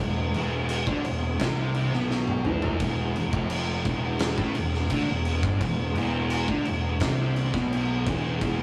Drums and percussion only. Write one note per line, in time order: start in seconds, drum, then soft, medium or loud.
0.34 crash medium
0.69 crash medium
0.87 kick loud
1.05 crash medium
1.40 kick loud
1.40 snare loud
1.40 crash medium
1.74 crash medium
1.93 snare soft
2.11 snare medium
2.28 high tom medium
2.45 mid tom loud
2.62 floor tom loud
2.80 kick loud
2.80 crash medium
3.16 crash medium
3.33 kick loud
3.50 crash loud
3.85 kick loud
3.85 crash medium
4.19 snare loud
4.19 crash loud
4.38 kick loud
4.55 crash medium
4.74 snare soft
4.90 kick loud
4.90 crash medium
5.25 crash medium
5.43 kick loud
5.61 kick loud
5.61 crash medium
5.95 crash medium
6.30 crash medium
6.48 kick loud
6.65 crash medium
7.00 kick loud
7.00 snare loud
7.00 crash medium
7.36 crash medium
7.54 kick loud
7.54 snare soft
7.73 crash medium
8.07 kick loud
8.07 crash medium
8.41 kick loud
8.41 crash medium